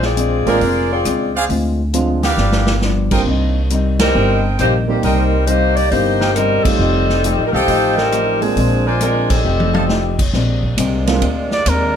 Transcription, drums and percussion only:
0.02 snare
0.17 closed hi-hat
0.47 open hi-hat
0.61 kick, open hi-hat
1.05 cross-stick, closed hi-hat
1.49 kick, open hi-hat
1.94 closed hi-hat
2.23 snare, open hi-hat
2.37 snare
2.52 snare
2.67 snare
2.81 snare
3.11 kick, crash
3.26 kick
3.70 closed hi-hat
3.99 snare, ride
4.59 cross-stick, closed hi-hat
5.03 kick, open hi-hat
5.47 closed hi-hat
5.77 open hi-hat
5.91 kick, open hi-hat
6.21 snare
6.36 cross-stick, closed hi-hat
6.65 kick, crash
7.09 snare
7.24 closed hi-hat
7.68 kick, open hi-hat
7.98 snare
8.12 cross-stick, closed hi-hat
8.42 open hi-hat
8.56 kick, open hi-hat
9.01 closed hi-hat
9.30 kick, crash
9.60 high tom
9.74 high tom
9.89 snare
10.19 kick, crash
10.33 kick, snare
10.63 kick
10.78 kick, hi-hat pedal, ride
11.07 snare, ride
11.22 kick, ride
11.51 snare
11.66 kick, hi-hat pedal, ride

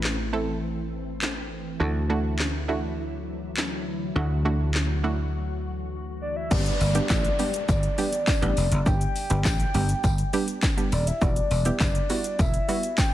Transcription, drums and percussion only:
0.04 snare, clap
1.22 snare, clap
2.39 snare, clap
3.57 snare, clap
4.74 snare, clap
6.51 kick, crash, shaker
6.66 closed hi-hat, shaker
6.81 open hi-hat, tambourine, shaker
6.95 closed hi-hat, shaker
7.10 kick, snare, clap, tambourine, shaker
7.25 closed hi-hat, shaker
7.39 open hi-hat, tambourine, shaker
7.54 closed hi-hat, shaker
7.69 kick, tambourine, shaker
7.83 closed hi-hat, shaker
7.98 open hi-hat, tambourine, shaker
8.13 closed hi-hat, shaker
8.27 kick, snare, clap, tambourine, shaker
8.42 closed hi-hat, shaker
8.57 open hi-hat, tambourine, shaker
8.72 closed hi-hat, shaker
8.86 kick, tambourine, shaker
9.01 closed hi-hat, shaker
9.16 open hi-hat, tambourine, shaker
9.30 closed hi-hat, shaker
9.45 kick, snare, clap, tambourine, shaker
9.60 closed hi-hat, shaker
9.74 open hi-hat, tambourine, shaker
9.89 closed hi-hat, shaker
10.04 kick, tambourine, shaker
10.18 closed hi-hat, shaker
10.33 open hi-hat, tambourine, shaker
10.48 closed hi-hat, shaker
10.63 kick, snare, clap, tambourine, shaker
10.78 closed hi-hat, shaker
10.92 open hi-hat, tambourine, shaker
11.07 closed hi-hat, shaker
11.21 kick, tambourine, shaker
11.36 closed hi-hat, shaker
11.51 open hi-hat, tambourine, shaker
11.65 closed hi-hat, shaker
11.80 kick, snare, clap, tambourine, shaker
11.95 closed hi-hat, shaker
12.10 open hi-hat, tambourine, shaker
12.24 closed hi-hat, shaker
12.39 kick, tambourine, shaker
12.54 closed hi-hat, shaker
12.69 open hi-hat, shaker
12.83 closed hi-hat, shaker
12.98 kick, snare, clap, tambourine, shaker

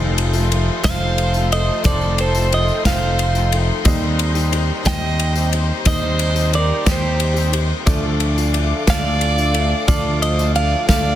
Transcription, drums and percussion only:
0.18 ride
0.33 tambourine
0.52 ride
0.83 kick, snare, ride, tambourine
1.18 ride
1.34 tambourine
1.52 ride
1.84 kick, ride, tambourine
2.01 tambourine
2.18 ride
2.35 tambourine
2.53 ride
2.68 tambourine
2.85 kick, snare, ride, tambourine
3.19 ride, tambourine
3.35 tambourine
3.52 ride
3.85 kick, ride, tambourine
4.19 ride
4.35 tambourine
4.53 ride
4.85 kick, snare, ride, tambourine
5.19 ride
5.36 tambourine
5.53 ride
5.85 kick, ride, tambourine
6.19 ride
6.36 tambourine
6.53 ride
6.86 kick, snare, ride, tambourine
7.20 ride
7.37 tambourine
7.53 ride
7.87 kick, ride, tambourine
8.20 ride
8.38 tambourine
8.54 ride
8.87 kick, snare, ride, tambourine
9.21 ride
9.38 tambourine
9.54 ride
9.88 kick, ride, tambourine
10.22 ride
10.39 tambourine
10.56 ride
10.89 kick, snare, ride, tambourine

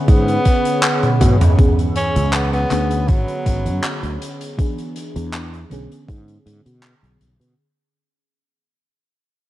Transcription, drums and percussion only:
0.08 kick, closed hi-hat
0.28 closed hi-hat
0.45 kick, closed hi-hat
0.65 closed hi-hat
0.83 clap, closed hi-hat
1.03 closed hi-hat, high tom
1.21 kick, closed hi-hat, mid tom
1.41 closed hi-hat, mid tom
1.59 kick, closed hi-hat
1.79 closed hi-hat
1.96 closed hi-hat
2.16 closed hi-hat
2.33 clap, closed hi-hat
2.53 closed hi-hat
2.71 clap, closed hi-hat
2.91 closed hi-hat
3.08 kick, closed hi-hat
3.28 closed hi-hat
3.46 kick, closed hi-hat
3.66 closed hi-hat
3.84 clap, closed hi-hat
4.03 closed hi-hat
4.22 closed hi-hat
4.41 closed hi-hat
4.59 kick, closed hi-hat
4.78 closed hi-hat
4.96 closed hi-hat
5.16 closed hi-hat
5.33 clap, closed hi-hat
5.54 closed hi-hat
5.71 closed hi-hat
5.92 closed hi-hat
6.08 kick, closed hi-hat
6.28 closed hi-hat
6.47 closed hi-hat
6.66 closed hi-hat
6.83 clap
7.04 closed hi-hat
7.21 closed hi-hat
7.41 closed hi-hat

